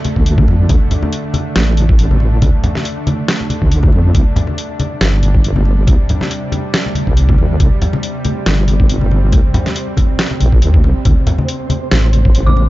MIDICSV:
0, 0, Header, 1, 6, 480
1, 0, Start_track
1, 0, Tempo, 431655
1, 772, Time_signature, 4, 2, 24, 8
1, 14111, End_track
2, 0, Start_track
2, 0, Title_t, "Synth bell"
2, 0, Program_c, 0, 98
2, 13861, Note_on_c, 0, 86, 89
2, 14111, Note_off_c, 0, 86, 0
2, 14111, End_track
3, 0, Start_track
3, 0, Title_t, "Synth texture"
3, 0, Program_c, 1, 99
3, 12297, Note_on_c, 1, 60, 82
3, 12297, Note_on_c, 1, 72, 81
3, 14111, Note_off_c, 1, 60, 0
3, 14111, Note_off_c, 1, 72, 0
3, 14111, End_track
4, 0, Start_track
4, 0, Title_t, "Synth drone"
4, 0, Program_c, 2, 95
4, 0, Note_on_c, 2, 50, 73
4, 0, Note_on_c, 2, 57, 69
4, 0, Note_on_c, 2, 62, 84
4, 4565, Note_off_c, 2, 57, 0
4, 4566, Note_off_c, 2, 50, 0
4, 4610, Note_on_c, 2, 48, 78
4, 4611, Note_on_c, 2, 55, 69
4, 8406, Note_off_c, 2, 62, 0
4, 8451, Note_on_c, 2, 60, 87
4, 12247, Note_off_c, 2, 48, 0
4, 12247, Note_off_c, 2, 55, 0
4, 12253, Note_off_c, 2, 60, 0
4, 12288, Note_on_c, 2, 50, 78
4, 12288, Note_on_c, 2, 62, 85
4, 12290, Note_on_c, 2, 57, 72
4, 14111, Note_off_c, 2, 50, 0
4, 14111, Note_off_c, 2, 57, 0
4, 14111, Note_off_c, 2, 62, 0
4, 14111, End_track
5, 0, Start_track
5, 0, Title_t, "Wobble bass"
5, 0, Program_c, 3, 39
5, 181, Note_on_c, 3, 38, 85
5, 517, Note_off_c, 3, 38, 0
5, 532, Note_on_c, 3, 41, 86
5, 754, Note_off_c, 3, 41, 0
5, 771, Note_on_c, 3, 38, 97
5, 892, Note_off_c, 3, 38, 0
5, 1734, Note_on_c, 3, 33, 94
5, 2679, Note_off_c, 3, 33, 0
5, 2692, Note_on_c, 3, 38, 91
5, 2813, Note_off_c, 3, 38, 0
5, 4023, Note_on_c, 3, 38, 82
5, 4358, Note_off_c, 3, 38, 0
5, 4372, Note_on_c, 3, 41, 89
5, 4594, Note_off_c, 3, 41, 0
5, 4611, Note_on_c, 3, 36, 95
5, 4732, Note_off_c, 3, 36, 0
5, 5572, Note_on_c, 3, 31, 98
5, 6518, Note_off_c, 3, 31, 0
5, 6533, Note_on_c, 3, 36, 93
5, 6653, Note_off_c, 3, 36, 0
5, 7863, Note_on_c, 3, 36, 83
5, 8198, Note_off_c, 3, 36, 0
5, 8212, Note_on_c, 3, 39, 89
5, 8435, Note_off_c, 3, 39, 0
5, 8453, Note_on_c, 3, 36, 97
5, 8573, Note_off_c, 3, 36, 0
5, 9411, Note_on_c, 3, 31, 96
5, 10358, Note_off_c, 3, 31, 0
5, 10372, Note_on_c, 3, 36, 91
5, 10493, Note_off_c, 3, 36, 0
5, 11572, Note_on_c, 3, 34, 84
5, 11811, Note_on_c, 3, 39, 85
5, 11828, Note_off_c, 3, 34, 0
5, 12052, Note_on_c, 3, 36, 76
5, 12069, Note_off_c, 3, 39, 0
5, 12173, Note_off_c, 3, 36, 0
5, 12292, Note_on_c, 3, 38, 95
5, 12412, Note_off_c, 3, 38, 0
5, 13252, Note_on_c, 3, 33, 94
5, 14111, Note_off_c, 3, 33, 0
5, 14111, End_track
6, 0, Start_track
6, 0, Title_t, "Drums"
6, 50, Note_on_c, 9, 42, 51
6, 55, Note_on_c, 9, 63, 73
6, 161, Note_off_c, 9, 42, 0
6, 166, Note_off_c, 9, 63, 0
6, 182, Note_on_c, 9, 36, 61
6, 290, Note_on_c, 9, 42, 75
6, 293, Note_off_c, 9, 36, 0
6, 402, Note_off_c, 9, 42, 0
6, 422, Note_on_c, 9, 36, 104
6, 422, Note_on_c, 9, 63, 97
6, 533, Note_off_c, 9, 36, 0
6, 533, Note_off_c, 9, 63, 0
6, 535, Note_on_c, 9, 62, 53
6, 646, Note_off_c, 9, 62, 0
6, 771, Note_on_c, 9, 36, 119
6, 771, Note_on_c, 9, 42, 76
6, 776, Note_on_c, 9, 63, 96
6, 882, Note_off_c, 9, 36, 0
6, 882, Note_off_c, 9, 42, 0
6, 887, Note_off_c, 9, 63, 0
6, 1011, Note_on_c, 9, 42, 50
6, 1011, Note_on_c, 9, 64, 82
6, 1123, Note_off_c, 9, 42, 0
6, 1123, Note_off_c, 9, 64, 0
6, 1139, Note_on_c, 9, 62, 58
6, 1143, Note_on_c, 9, 63, 70
6, 1251, Note_off_c, 9, 62, 0
6, 1251, Note_on_c, 9, 42, 70
6, 1254, Note_off_c, 9, 63, 0
6, 1363, Note_off_c, 9, 42, 0
6, 1486, Note_on_c, 9, 63, 91
6, 1490, Note_on_c, 9, 42, 49
6, 1597, Note_off_c, 9, 63, 0
6, 1601, Note_off_c, 9, 42, 0
6, 1731, Note_on_c, 9, 38, 119
6, 1731, Note_on_c, 9, 42, 73
6, 1843, Note_off_c, 9, 38, 0
6, 1843, Note_off_c, 9, 42, 0
6, 1971, Note_on_c, 9, 42, 50
6, 1981, Note_on_c, 9, 63, 65
6, 2082, Note_off_c, 9, 42, 0
6, 2092, Note_off_c, 9, 63, 0
6, 2103, Note_on_c, 9, 36, 104
6, 2211, Note_on_c, 9, 42, 72
6, 2214, Note_off_c, 9, 36, 0
6, 2322, Note_off_c, 9, 42, 0
6, 2345, Note_on_c, 9, 63, 95
6, 2448, Note_on_c, 9, 62, 48
6, 2456, Note_off_c, 9, 63, 0
6, 2559, Note_off_c, 9, 62, 0
6, 2691, Note_on_c, 9, 42, 73
6, 2692, Note_on_c, 9, 63, 95
6, 2693, Note_on_c, 9, 36, 118
6, 2802, Note_off_c, 9, 42, 0
6, 2803, Note_off_c, 9, 63, 0
6, 2804, Note_off_c, 9, 36, 0
6, 2930, Note_on_c, 9, 64, 81
6, 2931, Note_on_c, 9, 42, 50
6, 3041, Note_off_c, 9, 64, 0
6, 3042, Note_off_c, 9, 42, 0
6, 3062, Note_on_c, 9, 38, 36
6, 3067, Note_on_c, 9, 63, 69
6, 3172, Note_on_c, 9, 42, 70
6, 3173, Note_off_c, 9, 38, 0
6, 3178, Note_off_c, 9, 63, 0
6, 3283, Note_off_c, 9, 42, 0
6, 3411, Note_on_c, 9, 63, 96
6, 3412, Note_on_c, 9, 42, 49
6, 3522, Note_off_c, 9, 63, 0
6, 3524, Note_off_c, 9, 42, 0
6, 3652, Note_on_c, 9, 38, 113
6, 3652, Note_on_c, 9, 42, 73
6, 3763, Note_off_c, 9, 38, 0
6, 3763, Note_off_c, 9, 42, 0
6, 3788, Note_on_c, 9, 62, 51
6, 3889, Note_on_c, 9, 63, 67
6, 3893, Note_on_c, 9, 42, 50
6, 3899, Note_off_c, 9, 62, 0
6, 4000, Note_off_c, 9, 63, 0
6, 4004, Note_off_c, 9, 42, 0
6, 4023, Note_on_c, 9, 36, 61
6, 4131, Note_on_c, 9, 42, 70
6, 4134, Note_off_c, 9, 36, 0
6, 4243, Note_off_c, 9, 42, 0
6, 4256, Note_on_c, 9, 63, 96
6, 4263, Note_on_c, 9, 36, 104
6, 4365, Note_on_c, 9, 62, 48
6, 4368, Note_off_c, 9, 63, 0
6, 4374, Note_off_c, 9, 36, 0
6, 4476, Note_off_c, 9, 62, 0
6, 4608, Note_on_c, 9, 63, 91
6, 4611, Note_on_c, 9, 42, 73
6, 4612, Note_on_c, 9, 36, 109
6, 4719, Note_off_c, 9, 63, 0
6, 4722, Note_off_c, 9, 42, 0
6, 4723, Note_off_c, 9, 36, 0
6, 4849, Note_on_c, 9, 64, 85
6, 4853, Note_on_c, 9, 42, 49
6, 4960, Note_off_c, 9, 64, 0
6, 4964, Note_off_c, 9, 42, 0
6, 4972, Note_on_c, 9, 62, 52
6, 4992, Note_on_c, 9, 63, 60
6, 5083, Note_off_c, 9, 62, 0
6, 5093, Note_on_c, 9, 42, 73
6, 5103, Note_off_c, 9, 63, 0
6, 5204, Note_off_c, 9, 42, 0
6, 5332, Note_on_c, 9, 42, 48
6, 5333, Note_on_c, 9, 63, 84
6, 5444, Note_off_c, 9, 42, 0
6, 5445, Note_off_c, 9, 63, 0
6, 5571, Note_on_c, 9, 38, 114
6, 5571, Note_on_c, 9, 42, 74
6, 5683, Note_off_c, 9, 38, 0
6, 5683, Note_off_c, 9, 42, 0
6, 5812, Note_on_c, 9, 63, 59
6, 5813, Note_on_c, 9, 42, 51
6, 5923, Note_off_c, 9, 63, 0
6, 5925, Note_off_c, 9, 42, 0
6, 5943, Note_on_c, 9, 36, 97
6, 6053, Note_on_c, 9, 42, 72
6, 6054, Note_off_c, 9, 36, 0
6, 6164, Note_off_c, 9, 42, 0
6, 6181, Note_on_c, 9, 63, 93
6, 6287, Note_on_c, 9, 62, 43
6, 6292, Note_off_c, 9, 63, 0
6, 6398, Note_off_c, 9, 62, 0
6, 6525, Note_on_c, 9, 63, 81
6, 6533, Note_on_c, 9, 36, 108
6, 6533, Note_on_c, 9, 42, 76
6, 6637, Note_off_c, 9, 63, 0
6, 6644, Note_off_c, 9, 36, 0
6, 6645, Note_off_c, 9, 42, 0
6, 6774, Note_on_c, 9, 42, 52
6, 6781, Note_on_c, 9, 64, 78
6, 6885, Note_off_c, 9, 42, 0
6, 6892, Note_off_c, 9, 64, 0
6, 6903, Note_on_c, 9, 63, 62
6, 6907, Note_on_c, 9, 38, 34
6, 7014, Note_off_c, 9, 63, 0
6, 7015, Note_on_c, 9, 42, 71
6, 7019, Note_off_c, 9, 38, 0
6, 7127, Note_off_c, 9, 42, 0
6, 7249, Note_on_c, 9, 63, 86
6, 7254, Note_on_c, 9, 42, 52
6, 7361, Note_off_c, 9, 63, 0
6, 7365, Note_off_c, 9, 42, 0
6, 7492, Note_on_c, 9, 38, 108
6, 7492, Note_on_c, 9, 42, 75
6, 7604, Note_off_c, 9, 38, 0
6, 7604, Note_off_c, 9, 42, 0
6, 7630, Note_on_c, 9, 62, 48
6, 7728, Note_on_c, 9, 63, 66
6, 7733, Note_on_c, 9, 42, 51
6, 7741, Note_off_c, 9, 62, 0
6, 7839, Note_off_c, 9, 63, 0
6, 7844, Note_off_c, 9, 42, 0
6, 7864, Note_on_c, 9, 36, 59
6, 7972, Note_on_c, 9, 42, 76
6, 7975, Note_off_c, 9, 36, 0
6, 8083, Note_off_c, 9, 42, 0
6, 8104, Note_on_c, 9, 36, 98
6, 8108, Note_on_c, 9, 63, 85
6, 8210, Note_on_c, 9, 62, 45
6, 8215, Note_off_c, 9, 36, 0
6, 8219, Note_off_c, 9, 63, 0
6, 8322, Note_off_c, 9, 62, 0
6, 8449, Note_on_c, 9, 63, 80
6, 8451, Note_on_c, 9, 42, 78
6, 8453, Note_on_c, 9, 36, 106
6, 8560, Note_off_c, 9, 63, 0
6, 8562, Note_off_c, 9, 42, 0
6, 8564, Note_off_c, 9, 36, 0
6, 8691, Note_on_c, 9, 42, 54
6, 8692, Note_on_c, 9, 64, 82
6, 8803, Note_off_c, 9, 42, 0
6, 8803, Note_off_c, 9, 64, 0
6, 8821, Note_on_c, 9, 62, 60
6, 8827, Note_on_c, 9, 63, 64
6, 8930, Note_on_c, 9, 42, 77
6, 8932, Note_off_c, 9, 62, 0
6, 8939, Note_off_c, 9, 63, 0
6, 9042, Note_off_c, 9, 42, 0
6, 9169, Note_on_c, 9, 42, 55
6, 9176, Note_on_c, 9, 63, 82
6, 9280, Note_off_c, 9, 42, 0
6, 9287, Note_off_c, 9, 63, 0
6, 9411, Note_on_c, 9, 38, 106
6, 9411, Note_on_c, 9, 42, 78
6, 9522, Note_off_c, 9, 38, 0
6, 9522, Note_off_c, 9, 42, 0
6, 9650, Note_on_c, 9, 42, 54
6, 9651, Note_on_c, 9, 63, 64
6, 9761, Note_off_c, 9, 42, 0
6, 9762, Note_off_c, 9, 63, 0
6, 9783, Note_on_c, 9, 36, 94
6, 9891, Note_on_c, 9, 42, 77
6, 9894, Note_off_c, 9, 36, 0
6, 10002, Note_off_c, 9, 42, 0
6, 10022, Note_on_c, 9, 63, 76
6, 10133, Note_off_c, 9, 63, 0
6, 10134, Note_on_c, 9, 62, 51
6, 10245, Note_off_c, 9, 62, 0
6, 10367, Note_on_c, 9, 63, 92
6, 10369, Note_on_c, 9, 42, 80
6, 10372, Note_on_c, 9, 36, 112
6, 10478, Note_off_c, 9, 63, 0
6, 10480, Note_off_c, 9, 42, 0
6, 10483, Note_off_c, 9, 36, 0
6, 10609, Note_on_c, 9, 64, 96
6, 10611, Note_on_c, 9, 42, 54
6, 10721, Note_off_c, 9, 64, 0
6, 10723, Note_off_c, 9, 42, 0
6, 10741, Note_on_c, 9, 63, 56
6, 10743, Note_on_c, 9, 38, 35
6, 10743, Note_on_c, 9, 42, 36
6, 10747, Note_on_c, 9, 62, 56
6, 10850, Note_off_c, 9, 42, 0
6, 10850, Note_on_c, 9, 42, 76
6, 10853, Note_off_c, 9, 63, 0
6, 10854, Note_off_c, 9, 38, 0
6, 10858, Note_off_c, 9, 62, 0
6, 10962, Note_off_c, 9, 42, 0
6, 11084, Note_on_c, 9, 63, 83
6, 11091, Note_on_c, 9, 42, 53
6, 11092, Note_on_c, 9, 36, 57
6, 11195, Note_off_c, 9, 63, 0
6, 11203, Note_off_c, 9, 36, 0
6, 11203, Note_off_c, 9, 42, 0
6, 11330, Note_on_c, 9, 38, 108
6, 11330, Note_on_c, 9, 42, 78
6, 11441, Note_off_c, 9, 38, 0
6, 11441, Note_off_c, 9, 42, 0
6, 11465, Note_on_c, 9, 62, 55
6, 11567, Note_on_c, 9, 63, 62
6, 11570, Note_on_c, 9, 42, 55
6, 11576, Note_off_c, 9, 62, 0
6, 11679, Note_off_c, 9, 63, 0
6, 11681, Note_off_c, 9, 42, 0
6, 11703, Note_on_c, 9, 36, 58
6, 11810, Note_on_c, 9, 42, 76
6, 11814, Note_off_c, 9, 36, 0
6, 11921, Note_off_c, 9, 42, 0
6, 11938, Note_on_c, 9, 63, 84
6, 11943, Note_on_c, 9, 36, 97
6, 12049, Note_off_c, 9, 63, 0
6, 12054, Note_off_c, 9, 36, 0
6, 12054, Note_on_c, 9, 62, 54
6, 12165, Note_off_c, 9, 62, 0
6, 12290, Note_on_c, 9, 42, 80
6, 12292, Note_on_c, 9, 36, 114
6, 12294, Note_on_c, 9, 63, 84
6, 12401, Note_off_c, 9, 42, 0
6, 12403, Note_off_c, 9, 36, 0
6, 12405, Note_off_c, 9, 63, 0
6, 12528, Note_on_c, 9, 64, 89
6, 12529, Note_on_c, 9, 42, 55
6, 12639, Note_off_c, 9, 64, 0
6, 12640, Note_off_c, 9, 42, 0
6, 12660, Note_on_c, 9, 62, 59
6, 12661, Note_on_c, 9, 63, 66
6, 12771, Note_off_c, 9, 62, 0
6, 12771, Note_on_c, 9, 42, 80
6, 12772, Note_off_c, 9, 63, 0
6, 12882, Note_off_c, 9, 42, 0
6, 13006, Note_on_c, 9, 63, 99
6, 13010, Note_on_c, 9, 42, 53
6, 13118, Note_off_c, 9, 63, 0
6, 13121, Note_off_c, 9, 42, 0
6, 13249, Note_on_c, 9, 38, 115
6, 13249, Note_on_c, 9, 42, 82
6, 13360, Note_off_c, 9, 38, 0
6, 13360, Note_off_c, 9, 42, 0
6, 13489, Note_on_c, 9, 42, 55
6, 13497, Note_on_c, 9, 63, 64
6, 13600, Note_off_c, 9, 42, 0
6, 13608, Note_off_c, 9, 63, 0
6, 13624, Note_on_c, 9, 36, 98
6, 13730, Note_on_c, 9, 42, 80
6, 13735, Note_off_c, 9, 36, 0
6, 13841, Note_off_c, 9, 42, 0
6, 13867, Note_on_c, 9, 63, 93
6, 13974, Note_on_c, 9, 62, 52
6, 13978, Note_off_c, 9, 63, 0
6, 14086, Note_off_c, 9, 62, 0
6, 14111, End_track
0, 0, End_of_file